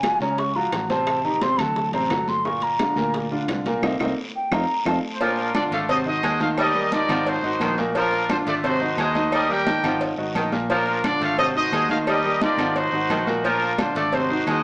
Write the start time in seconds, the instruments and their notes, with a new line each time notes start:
Already playing: fingered electric bass F#1, flute G#5
0.03 grand piano F3 F4 F#4, high bongo, high conga, high timbale, low timbale, short guiro, claves
0.20 fingered electric bass C#2, grand piano C#3 C#4 C#5, flute A#5, high bongo, high conga, short guiro
0.38 flute C#6, high bongo, high conga, high timbale, long guiro
0.55 grand piano F3 F4 F#4, flute A#5, high bongo, high conga
0.72 fingered electric bass A1, grand piano F3 F4 F#4, high bongo, low bongo, high conga, high timbale, low timbale, short guiro, claves
0.90 grand piano C3 C4 C5, flute A5, high bongo, high conga, high timbale, short guiro
1.07 high bongo, high conga, high timbale, long guiro, claves
1.24 grand piano D#3 D#4 G4, flute A#5, high conga
1.41 grand piano C3 C4 C5, flute C6, high bongo, high conga, high timbale, low timbale, short guiro
1.58 fingered electric bass D2, grand piano F#3 F#4 A4, flute A5, high bongo, high conga, low conga, high timbale, short guiro, claves
1.76 high bongo, high conga, long guiro
1.93 fingered electric bass A1, grand piano C3 C4 C5, flute A#5, high bongo, high conga, high timbale
2.09 fingered electric bass G1, grand piano F#3 F#4 A4, high bongo, low bongo, high conga, high timbale, low timbale, short guiro, claves
2.28 flute C6, high bongo, high conga, short guiro
2.45 grand piano A#2 A#3 A#4, flute C#6, high bongo, high conga, long guiro
2.62 flute A#5, high conga, high timbale
2.79 grand piano D3 D4 F4, high bongo, high conga, high timbale, low timbale, short guiro, claves
2.96 fingered electric bass D2, grand piano A#2 A#3 A#4, high bongo, high conga, short guiro
3.14 high bongo, high conga, high timbale, long guiro
3.31 grand piano D3 D4 F4, high bongo, high conga
3.48 fingered electric bass C2, grand piano D3 D4 F4, high bongo, low bongo, high conga, high timbale, low timbale, short guiro, claves
3.66 grand piano A#2 A#3 A#4, high bongo, high conga, high timbale, short guiro
3.82 fingered electric bass C2, grand piano A#3 C4 D#4, low bongo, high conga, high timbale, long guiro, claves
4.00 fingered electric bass C2, grand piano A#3 C4 D#4, low bongo, high conga, high timbale, long guiro, claves
4.36 flute G5
4.51 fingered electric bass F2, grand piano C4 D#4 F4, flute A#5, low bongo, high conga, high timbale, long guiro, claves
4.85 fingered electric bass F2, grand piano C4 D#4 F4, flute A5, low bongo, high conga, high timbale, long guiro, claves
5.14 trumpet section C5
5.20 grand piano A#2 A#3 A#4, saxophone section F3, trumpet section D4 F4 A#4, cowbell, high conga, low agogo
5.37 high conga, low agogo
5.54 grand piano D3 D4 F4, trumpet section D5, cowbell, high conga, low timbale, low agogo, short guiro, claves
5.71 fingered electric bass G#1, saxophone section A3, trumpet section F5, cowbell, high conga, short guiro
5.89 grand piano C3 C4 C5, trumpet section F#4 C5 D#5, cowbell, high conga, low agogo, long guiro
6.06 grand piano D#3 D#4 F#4, trumpet section F#4 C5 D#5, high conga
6.23 fingered electric bass D#2, saxophone section G#3, cowbell, high conga, low timbale, low agogo, short guiro, claves
6.40 grand piano D#3 D#4 D#5, trumpet section F5, high conga, low agogo, short guiro
6.58 saxophone section G3, trumpet section G4 A#4 D#5, cowbell, high conga, low agogo, long guiro, claves
6.75 grand piano G3 G4 A#4, high conga
6.92 grand piano D#3 D#4 D#5, trumpet section F4 G4 D5, cowbell, high conga, low timbale, low agogo, short guiro
7.09 fingered electric bass G#1, grand piano D#3 D#4 F#5, saxophone section F3, cowbell, high conga, low conga, low agogo, short guiro, claves
7.26 trumpet section D#4 F#4 C5, cowbell, high conga, low agogo, long guiro
7.43 fingered electric bass G#1, grand piano D#3 D#4 F#4, high conga
7.60 fingered electric bass A#1, saxophone section D#3, cowbell, high conga, low timbale, low agogo, short guiro, claves
7.78 grand piano A#2 A#3 A#4, high conga, short guiro
7.95 grand piano A#2 A#3 A#4, saxophone section F3, trumpet section D4 F4 A#4, cowbell, high conga, low agogo, long guiro
8.12 high conga, low agogo
8.29 grand piano D3 D4 F4, trumpet section C5, cowbell, high conga, low timbale, low agogo, short guiro, claves
8.46 fingered electric bass G#1, saxophone section A3, trumpet section D5, cowbell, high conga, short guiro
8.64 grand piano C3 C4 C5, trumpet section D#4 F#4 C5, cowbell, high conga, low agogo, long guiro
8.81 grand piano D#3 D#4 F#4, high conga
8.97 fingered electric bass D#2, saxophone section G#3, trumpet section F#4 C5 D#5, cowbell, high conga, low timbale, low agogo, short guiro, claves
9.15 grand piano D#3 D#4 D#5, high conga, low agogo, short guiro
9.32 saxophone section G3, trumpet section G4 A#4 D#5, cowbell, high conga, low agogo, long guiro, claves
9.49 grand piano G3 G4 A#4, trumpet section A#4 G5, high conga
9.66 grand piano D#3 D#4 D#5, cowbell, high conga, low timbale, low agogo, short guiro
9.84 fingered electric bass G#1, grand piano D#3 D#4 F#5, saxophone section F3, cowbell, high conga, low conga, low agogo, short guiro, claves
10.01 cowbell, high conga, low agogo, long guiro
10.18 fingered electric bass G#1, grand piano D#3 D#4 F#4, high conga
10.35 fingered electric bass A#1, saxophone section D#3, cowbell, high conga, low timbale, low agogo, short guiro, claves
10.52 grand piano A#2 A#3 A#4, high conga, short guiro
10.69 grand piano A#2 A#3 A#4, saxophone section F3, trumpet section D4 F4 A#4, cowbell, high conga, low agogo, long guiro
10.87 high conga, low agogo
11.04 grand piano D3 D4 F4, trumpet section D5, cowbell, high conga, low timbale, low agogo, short guiro, claves
11.21 fingered electric bass G#1, saxophone section A3, trumpet section F5, cowbell, high conga, short guiro
11.38 grand piano C3 C4 C5, trumpet section F#4 C5 D#5, cowbell, high conga, low agogo, long guiro
11.55 grand piano D#3 D#4 F#4, trumpet section F#4 C5 D#5, high conga
11.72 fingered electric bass D#2, saxophone section G#3, cowbell, high conga, low timbale, low agogo, short guiro, claves
11.89 grand piano D#3 D#4 D#5, trumpet section F5, high conga, low agogo, short guiro
12.07 saxophone section G3, trumpet section G4 A#4 D#5, cowbell, high conga, low agogo, long guiro, claves
12.24 grand piano G3 G4 A#4, high conga
12.41 grand piano D#3 D#4 D#5, trumpet section F4 G4 D5, cowbell, high conga, low timbale, low agogo, short guiro
12.57 fingered electric bass G#1, grand piano D#3 D#4 F#5, saxophone section F3, cowbell, high conga, low conga, low agogo, short guiro, claves
12.76 trumpet section D#4 F#4 C5, cowbell, high conga, low agogo, long guiro
12.92 fingered electric bass G#1, grand piano D#3 D#4 F#4, high conga
13.09 fingered electric bass A#1, saxophone section D#3, cowbell, high conga, low timbale, low agogo, short guiro, claves
13.27 grand piano A#2 A#3 A#4, high conga, short guiro
13.44 grand piano A#2 A#3 A#4, saxophone section F3, trumpet section D4 F4 A#4, cowbell, high conga, low agogo, long guiro
13.61 high conga, low agogo
13.78 grand piano D3 D4 F4, trumpet section C5, cowbell, high conga, low timbale, low agogo, short guiro, claves
13.95 fingered electric bass G#1, saxophone section A3, trumpet section D5, cowbell, high conga, short guiro
14.12 grand piano C3 C4 C5, trumpet section D#4 F#4 C5, cowbell, high conga, low agogo, long guiro
14.30 grand piano D#3 D#4 F#4, high conga
14.46 fingered electric bass D#2, saxophone section G#3, trumpet section F#4 C5 D#5, cowbell, high conga, low timbale, low agogo, short guiro, claves